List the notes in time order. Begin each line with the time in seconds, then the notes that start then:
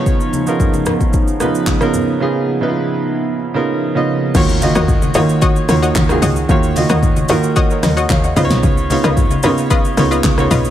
Already playing: C#3 F3 B3 D#4 F4 C#5
0.06 kick, shaker
0.20 shaker
0.33 high conga, shaker
0.47 C#3 B3 D#4 F4 A#4, shaker
0.60 kick, low conga, shaker
0.74 high conga, shaker
0.86 cross-stick, low conga, shaker
1.01 kick, shaker
1.13 kick, shaker
1.28 shaker
1.40 C#3 B3 D#4 F4 B4, cross-stick, high conga, shaker
1.55 shaker
1.66 kick, clap, high conga, shaker
1.81 C#3 B3 D#4 F4 A#4, cross-stick, shaker
1.94 low conga, shaker
2.20 C#3 B3 D#4 F4 G#4
2.61 C#3 B3 D#4 E4 B4
2.69 F4
3.54 C#3 B3 D#4 F4 A#4
3.95 C#3 B3 D#4 F4 D#5
4.34 D#2 D#3 A#3 F4 F#4 C#5, kick, crash, impact, low conga, shaker
4.49 shaker
4.61 D#3 A#3 F4 F#4 D#5, open hi-hat, high conga, shaker
4.75 D#2 F#4 C#5 D#5, cross-stick, shaker
4.88 kick, low conga, shaker
5.02 high conga, shaker
5.14 D#3 A#3 F4 F#4 C#5 D#5, cross-stick, open hi-hat, low conga, shaker
5.29 shaker
5.42 F#4 C#5 D#5, kick, shaker
5.56 shaker
5.69 D#2 D#3 A#3 F4 F#4 C#5, cross-stick, open hi-hat, high conga, shaker
5.82 F#4 C#5 D#5, shaker
5.95 D#2, kick, clap, high conga, shaker
6.09 D#3 A#3 F4 F#4 G#4, cross-stick, high conga, shaker
6.22 C#2 F#4 C#5 D#5, open hi-hat, low conga, shaker
6.36 shaker
6.49 D#2 D#3 A#3 F4 F#4 C#5, kick, low conga, shaker
6.63 shaker
6.76 D#3 A#3 F4 F#4 D#5, open hi-hat, high conga, shaker
6.89 D#2 F#4 C#5 D#5, cross-stick, shaker
7.03 kick, low conga, shaker
7.16 high conga, shaker
7.29 D#3 A#3 F4 F#4 A#4 C#5 D#5, open hi-hat, low conga, shaker
7.43 shaker
7.56 F#4 C#5 D#5, kick, shaker
7.71 A#4 C#5, shaker
7.83 D#2 D#5, cross-stick, snare, open hi-hat, high conga, shaker
7.97 F#4 C#5 D#5, shaker
8.09 D#2 C#5 F5, kick, clap, high conga, shaker
8.24 D#5 F#5, high conga, shaker
8.36 C#2 C#3 B3 D#4 F4 B4 C5 D#5, open hi-hat, low conga, shaker
8.45 C#5
8.50 B1, snare, shaker
8.63 C#2, kick, low conga, shaker
8.77 shaker
8.90 C#3 B3 D#4 F4 C#5, open hi-hat, high conga, shaker
9.04 C#2 F4 B4 D#5, cross-stick, shaker
9.17 kick, low conga, shaker
9.31 high conga, shaker
9.43 C#3 B3 D#4 F4 B4 C#5 D#5, cross-stick, open hi-hat, low conga, shaker
9.58 shaker
9.70 F4 B4 D#5, kick, shaker
9.85 shaker
9.97 C#2 C#3 B3 D#4 F4 C#5, cross-stick, open hi-hat, high conga, shaker
10.11 F4 B4 D#5, shaker
10.23 C#2, kick, clap, high conga, shaker
10.38 C#3 B3 D#4 F4 C#5, cross-stick, high conga, shaker
10.51 B1 F4 B4 D#5, open hi-hat, low conga, shaker
10.65 shaker